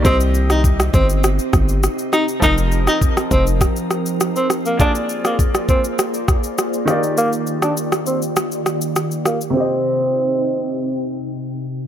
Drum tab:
SH |xxxxxxxxxxxxxxxx|xxxxxxxxxxxxxxxx|xxxxxxxxxxxxxxxx|xxxxxxxxxxxxxxxx|
SD |---r-r--r-r-r-r-|---r-r--r-r-r-r-|---r-r--r-r-r-r-|---r-r--r-r-r-r-|
BD |o---o-o---o-----|o---o-o-o-------|o---o-o---o-----|----------------|

SH |----------------|
SD |----------------|
BD |----------------|